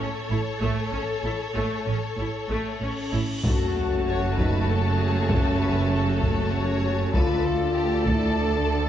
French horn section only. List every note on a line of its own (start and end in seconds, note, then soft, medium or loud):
2.81 3.41 C#4 medium
3.45 4.38 F#4 medium
4.38 4.68 D#4 medium
4.68 5.28 C#4 medium
5.29 6.20 C#4 medium
6.21 6.52 A3 medium
6.53 7.14 C#4 medium
7.14 8.04 F4 medium
8.07 8.36 E4 medium
8.37 8.89 D4 medium